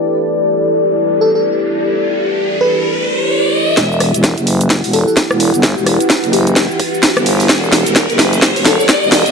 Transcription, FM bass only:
X:1
M:4/4
L:1/16
Q:"Swing 16ths" 1/4=129
K:Em
V:1 name="FM bass" clef=bass
z16 | z16 | E,,,3 E,,,2 F,,,4 E,,,2 z2 E,,,2 G,,,- | G,,, E,,,2 z2 F,,,4 z4 G,,,3 |
E,,,3 E,,,2 F,,,4 E,,,2 z2 E,,,2 G,,, |]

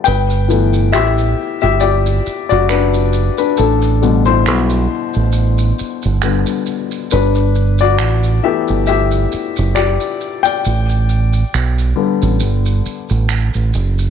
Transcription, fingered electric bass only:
X:1
M:4/4
L:1/16
Q:"Swing 16ths" 1/4=68
K:G
V:1 name="Fingered electric bass" clef=bass
G,,,4 A,,,2 z G,,,3 z F,,,4 z | A,,,4 B,,,2 z A,,,3 z G,,,2 z3 | G,,,4 A,,,2 z G,,,3 z F,,,2 z3 | A,,,4 B,,,2 z A,,, G,,,2 z A,,,2 A,,, F,,,2 |]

